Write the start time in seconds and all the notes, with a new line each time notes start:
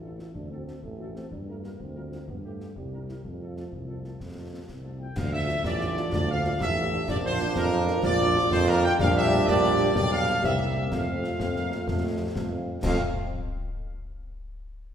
Already playing: A1 E4
0.02 A3 D4 F4 A4
0.18 A3 D4 F4 A4, snare
0.35 D2 D4, concert bass drum
0.50 A3 C4 D4 F#4 A4
0.66 A3 D4 F#4 A4, snare
0.83 A1 A3, concert bass drum
0.99 A3 D4 F#4 A4
1.14 A3 C4 D4 F#4 A4, snare
1.31 G2 D4, concert bass drum
1.47 G3 A3 D4 F4 A#4
1.63 G3 A#3 D4 F4 A#4, snare
1.79 D2 C4, concert bass drum
1.95 G3 D4 F4 A#4
2.11 G3 D4 F4 A#4, snare
2.28 G2 B3, concert bass drum
2.43 G3 A3 D4 F4 G4
2.59 G3 D4 F4 G4, snare
2.76 C2 G3, concert bass drum
2.92 G3 C4 E4 A#4
3.07 G3 C4 E4 A#4, snare
3.24 F2 F3, concert bass drum
3.40 A3 C4 F4 A4
3.55 A3 C4 F4 A4, snare
3.72 C2, concert bass drum
3.87 A3 C4 F4 A4
4.03 A3 C4 F4 A4, snare
4.20 F2, concert bass drum, snare
4.36 A3 C4 F4 A4
4.52 A3 C4 F4 A4
4.68 C2, concert bass drum, snare
4.84 A3 C4 F4 A4
4.99 A3 C4 F4 A4 G5
5.15 D2 F3 D4 F5, concert bass drum, snare, crash
5.32 F3 D4 F4 E5
5.48 F3 D4 F4, snare
5.64 A1 F4 D5, concert bass drum, snare
5.80 F3 D4 F4, snare
5.96 F3 D4 F4, snare
6.12 D2 D5, concert bass drum, snare
6.28 F3 D4 F4 F5
6.44 F3 D4 F4, snare
6.60 A1 G4 E5, concert bass drum, snare
6.76 F3 D4 F4
6.92 F3 D4 F4
7.07 A#1 F3 D4 F4 D5, concert bass drum, snare, crash
7.24 A#3 D4 F4 C5
7.40 A#3 D4 F4, snare
7.56 F2 A#4, concert bass drum, snare
7.72 A#3 D4 F4, snare
7.87 A#3 D4 F4, snare
8.03 A#1 D5, concert bass drum, snare
8.20 A#3 D4 F4
8.36 A#3 D4 F4, snare
8.51 F2 C5, concert bass drum, snare
8.67 A#3 D4 F4 A#4
8.83 A#3 D4 F4 G5
8.99 A#1 G3 D4 G4 F5, concert bass drum, snare, crash
9.15 E5
9.31 snare
9.47 A#1 G3 D4 G4 D5, concert bass drum, snare
9.64 snare
9.80 snare
9.95 B1 G3 D4 G4 D5, concert bass drum, snare
10.11 F5
10.28 snare
10.43 C2 A#3 C4 G4 E5, concert bass drum, snare
10.91 F2 A3 C4 F4 F5, concert bass drum, snare, crash
11.24 snare
11.39 F2 C4, concert bass drum, snare
11.56 A#3, snare
11.72 snare
11.87 F2 A3, concert bass drum, snare
12.35 F2 A3, concert bass drum, snare
12.51 C4
12.82 F2 A3 C4 F4 F5, concert bass drum, snare, crash